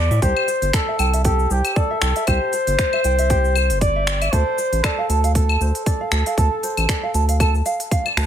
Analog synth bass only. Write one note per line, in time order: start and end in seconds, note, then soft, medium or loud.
0.00 0.10 E2 medium
0.11 0.20 A2 loud
0.22 0.34 C2 loud
0.62 0.71 G1 loud
0.99 1.47 C2 medium
1.51 1.62 C2 medium
2.02 2.13 C2 medium
2.28 2.39 C2 loud
2.67 2.76 G1 loud
3.05 3.72 C2 medium
3.70 4.29 G1 medium
4.33 4.44 D2 loud
4.73 4.81 A1 loud
5.09 5.57 D2 medium
5.61 5.72 D2 medium
6.12 6.23 D2 medium
6.38 6.49 D2 loud
6.78 6.87 A1 loud
7.14 7.62 D2 medium
8.17 8.26 D2 loud